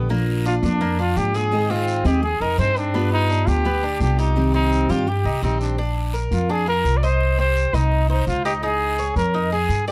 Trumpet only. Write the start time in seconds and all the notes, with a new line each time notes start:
0.47 F4
0.64 D4
1.00 F4
1.17 G4
1.36 G#4
1.71 F4
2.06 G4
2.24 G#4
2.41 A#4
2.59 C5
2.77 D4
3.13 D#4
3.48 G4
4.02 G4
4.19 D#4
4.55 D#4
4.90 F4
5.08 G4
5.44 D#4
5.61 D4
6.33 F4
6.51 G#4
6.69 A#4
6.97 D5
7.04 C5
7.40 C5
7.75 D#4
8.10 D#4
8.28 F4
8.45 G4
8.64 G#4
9.17 A#4
9.53 G#4
9.88 G4